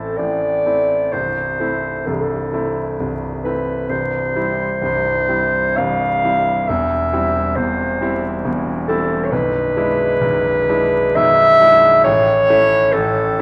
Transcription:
Already playing: grand piano A1 A2 A3 C4 E4, clarinet A4
0.18 grand piano A1 A2, clarinet D5
0.66 grand piano A3 C4 E4
1.12 grand piano C1 C2, clarinet C5
1.60 grand piano A3 C4 E4
2.07 grand piano C1 C2, clarinet A4
2.13 clarinet G4
2.21 clarinet A4
2.53 grand piano A3 C4 E4
3.00 grand piano C1 C2
3.45 grand piano A3 C4 E4, clarinet B4
3.90 grand piano C1 C2, clarinet C5
4.35 grand piano G3 C4 E4
4.81 grand piano C1 C2
5.28 grand piano G3 C4 E4
5.77 grand piano C1 C2, clarinet F5
6.24 grand piano G3 C4 E4
6.68 grand piano E1 E2, clarinet E5
7.13 grand piano G3 C4 E4
7.56 grand piano E1 E2, clarinet C5
8.01 grand piano G3 C4 E4
8.45 grand piano E1 E2
8.88 grand piano G3 C4 E4, clarinet A4
9.25 clarinet C#5
9.32 grand piano B0 B1, clarinet B4
9.77 grand piano G#3 D4 E4
10.21 grand piano B0 B1
10.69 grand piano G#3 D4 E4
11.16 grand piano B0 B1, clarinet E5
11.61 grand piano G#3 D4 E4
12.04 grand piano A1 A2, clarinet C#5
12.50 grand piano A3 C#4 E4
12.93 grand piano A1 A2, clarinet A4
13.39 grand piano A3

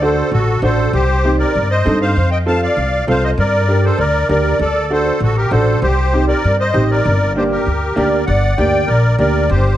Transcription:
Already playing: upright bass D2
0.02 upright piano D4 F#4 A4, accordion A4 C5
0.31 upright bass A1, accordion F#4 A4
0.62 upright bass A1, upright piano D4 F#4 C5, accordion A4 C5
0.93 upright bass C2, accordion G4 C5
1.25 upright piano C4 D#4 G4
1.39 accordion A#4 D5
1.55 upright bass G2
1.70 accordion C5 D#5
1.85 upright bass G2, upright piano C4 D#4 A4
2.01 accordion C5 F5
2.17 upright bass F2
2.31 accordion D#5 G5
2.46 upright piano C4 F4 A4, accordion F5 A5
2.62 accordion D5 F5
2.77 upright bass C2
3.07 upright bass C2, upright piano C4 F4 A4, accordion C5 F5
3.24 accordion C5 D#5
3.38 upright bass G2, accordion A#4 D5
3.68 upright piano D4 G4 A#4
3.85 accordion A4 C5
3.98 upright bass D2, accordion A#4 D5
4.29 upright bass D2, upright piano D4 G4 A#4, accordion A#4 D5
4.59 upright bass D2, accordion A4 D5
4.90 upright piano D4 F#4 A4, accordion A4 C5
5.20 upright bass A1, accordion F#4 A4
5.37 accordion G4 A#4
5.51 upright bass A1, upright piano D4 F#4 A4, accordion A4 C5
5.82 upright bass C2, accordion G4 C5
6.13 upright piano C4 D#4 G4
6.28 accordion A#4 D5
6.44 upright bass G2
6.60 accordion C5 D#5
6.74 upright bass A1, upright piano C4 D#4 G4
6.91 accordion A#4 D5
7.05 upright bass G1
7.35 upright piano A#3 D4 G4, accordion G4 C5
7.52 accordion G4 A#4
7.66 upright bass D2
7.96 upright bass D2, upright piano A#3 D4 G4, accordion A#4 D5
8.26 upright bass G1, accordion D5 F#5
8.57 upright bass D2, upright piano A#3 D4 G4, accordion D5 G5
8.87 upright bass A#1, accordion A#4 D5
9.18 upright bass D2, upright piano A#3 D4 G4, accordion A#4 D5
9.49 upright bass G1, accordion G4 C5

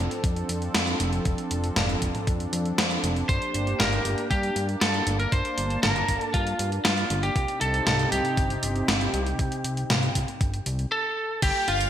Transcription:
Already playing: analog synth pad F3 C4 D4 A4
0.11 closed hi-hat
0.24 analog synth bass F2, kick, closed hi-hat
0.36 closed hi-hat
0.49 analog synth bass F2, closed hi-hat
0.62 closed hi-hat
0.75 analog synth bass F2, snare, closed hi-hat
0.87 closed hi-hat
1.00 analog synth bass F1, closed hi-hat
1.13 closed hi-hat
1.25 analog synth bass F1, kick, closed hi-hat
1.38 closed hi-hat
1.51 analog synth bass F1, closed hi-hat
1.64 closed hi-hat
1.76 analog synth bass F1, snare, closed hi-hat, mid tom
1.89 closed hi-hat
2.02 analog synth bass F1, kick, closed hi-hat
2.15 closed hi-hat, mid tom
2.27 analog synth bass F2, kick, closed hi-hat
2.40 closed hi-hat
2.53 analog synth bass F2, closed hi-hat
2.65 closed hi-hat
2.78 analog synth bass F2, snare, closed hi-hat
2.91 closed hi-hat
3.03 analog synth bass F1, closed hi-hat
3.16 closed hi-hat
3.29 analog synth bass G1, analog synth pad A#3 G4, lead electric guitar C5, kick, closed hi-hat
3.42 closed hi-hat
3.54 analog synth bass G1, closed hi-hat
3.67 closed hi-hat
3.79 analog synth bass G1, lead electric guitar A#4, snare, closed hi-hat, mid tom
3.92 closed hi-hat
4.05 analog synth bass G1, closed hi-hat
4.18 closed hi-hat
4.30 analog synth bass G2, lead electric guitar G4, kick, closed hi-hat
4.43 closed hi-hat
4.56 analog synth bass G2, closed hi-hat
4.69 closed hi-hat
4.81 analog synth bass G2, lead electric guitar A4, snare, closed hi-hat
4.94 closed hi-hat
5.07 analog synth bass G1, closed hi-hat
5.20 lead electric guitar A#4, closed hi-hat
5.32 analog synth bass G1, lead electric guitar C5, analog synth pad A5, kick, closed hi-hat
5.45 closed hi-hat
5.58 analog synth bass G1, closed hi-hat
5.70 closed hi-hat
5.83 analog synth bass G1, lead electric guitar A#4, snare, closed hi-hat, mid tom
5.96 closed hi-hat
6.08 analog synth bass G1, kick, closed hi-hat
6.21 lead electric guitar A4, closed hi-hat
6.34 analog synth bass G2, lead electric guitar F4, kick, closed hi-hat
6.47 closed hi-hat
6.59 analog synth bass G2, closed hi-hat
6.72 closed hi-hat
6.85 analog synth bass G2, lead electric guitar F4, snare, closed hi-hat
6.98 closed hi-hat
7.10 analog synth bass G1, closed hi-hat
7.23 lead electric guitar G4, closed hi-hat
7.36 analog synth bass C2, analog synth pad C3 C4 D#4 G4, kick, closed hi-hat
7.48 closed hi-hat
7.61 analog synth bass C2, lead electric guitar A4, closed hi-hat
7.74 closed hi-hat
7.87 analog synth bass C2, lead electric guitar A4, snare, closed hi-hat, mid tom
7.99 closed hi-hat
8.12 analog synth bass C2, lead electric guitar G4, closed hi-hat
8.25 closed hi-hat
8.37 analog synth bass G1, kick, closed hi-hat
8.50 closed hi-hat
8.63 analog synth bass G1, closed hi-hat
8.76 closed hi-hat
8.88 analog synth bass G1, snare, closed hi-hat
9.01 closed hi-hat
9.13 analog synth bass C2, closed hi-hat
9.26 closed hi-hat
9.39 analog synth bass C2, kick, closed hi-hat
9.52 closed hi-hat
9.64 analog synth bass C2, closed hi-hat
9.77 closed hi-hat
9.90 analog synth bass C2, snare, closed hi-hat, mid tom
10.03 closed hi-hat
10.15 analog synth bass C2, kick, closed hi-hat
10.28 closed hi-hat
10.41 analog synth bass G1, kick, closed hi-hat
10.54 closed hi-hat
10.66 analog synth bass C2, closed hi-hat
10.79 closed hi-hat
10.92 lead electric guitar A4
11.42 analog synth bass G1, analog synth pad G3 A#3 D4 F4, lead electric guitar G4, string machine G5, kick, closed hi-hat, crash
11.68 analog synth bass G1, lead electric guitar F4, string machine F5, closed hi-hat
11.81 closed hi-hat

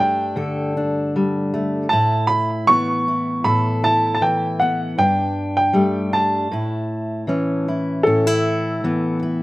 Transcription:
Already playing: steel-string acoustic guitar G2 G3 A3 D4 A4
0.00 upright piano G5
0.36 steel-string acoustic guitar D3 A4
0.77 steel-string acoustic guitar D4
1.16 steel-string acoustic guitar G3
1.54 steel-string acoustic guitar A3
1.89 steel-string acoustic guitar A2 E4, upright piano A5
2.27 upright piano B5
2.67 steel-string acoustic guitar E3 B3, upright piano C#6
3.08 steel-string acoustic guitar E4
3.44 steel-string acoustic guitar A2 A4, upright piano B5
3.83 steel-string acoustic guitar E4, upright piano A5
4.15 upright piano A5
4.21 steel-string acoustic guitar E3, upright piano G5
4.60 steel-string acoustic guitar B3, upright piano F#5
4.98 steel-string acoustic guitar G2 D4, upright piano G5
5.57 upright piano G5
5.73 steel-string acoustic guitar G3 A3
6.13 steel-string acoustic guitar D4, upright piano A5
6.51 steel-string acoustic guitar A2 E4
7.27 steel-string acoustic guitar E3 C#4
7.68 steel-string acoustic guitar E4
8.03 steel-string acoustic guitar A2 C#4, upright piano A4
8.27 steel-string acoustic guitar E4
8.84 steel-string acoustic guitar E3 B3
9.23 steel-string acoustic guitar E4

